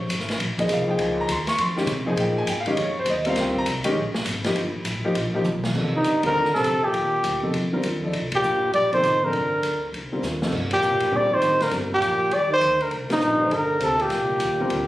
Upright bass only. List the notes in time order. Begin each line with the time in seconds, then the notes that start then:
0.09 G#1
0.38 A#1
0.68 C2
0.98 C#2
1.27 D#2
1.57 F2
1.86 C3
2.16 A#2
2.47 G#2
2.77 F2
3.06 D#2
3.37 C#2
3.66 C2
3.85 muted upright bass stroke
3.95 A#1
4.15 muted upright bass stroke
4.25 G#1
4.55 G1
4.74 muted upright bass stroke
4.85 A1
5.15 A#1
5.45 B1
5.75 C2
6.04 D2
6.34 D#2
6.44 C2
6.54 A#1
6.63 F2
6.94 D#2
7.24 D2
7.54 F2
7.83 D#2
8.13 C2
8.43 G1
8.74 A#1
9.03 A1
9.32 G1
9.63 D2
9.92 C2
10.22 D#2
10.52 G2
10.82 C3
10.93 A#2
11.02 G2
11.12 A#2
11.41 A2
11.71 G2
12.02 F2
12.32 D#2
12.61 D2
12.91 C2
13.21 A#1
13.50 G1
13.80 D2
14.10 C2
14.40 D#2
14.70 D2